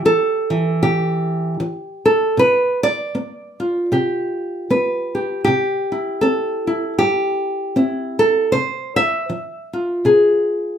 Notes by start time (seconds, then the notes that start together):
Already playing: G4
0.05 E3 A4
0.50 E3
0.83 C3 G4
1.60 E3
2.06 A4
2.37 C3 B4
2.83 D5
3.15 B3
3.60 F4
3.92 C3 G4
4.70 B3 B4
5.15 G4
5.44 C3 G4
5.92 E4
6.21 C4 A4
6.67 E4
6.99 G2 G4
7.76 C4 E4
8.19 A4
8.52 C3 C5
8.96 E5
9.30 F3
9.73 F4
10.05 C3 G#4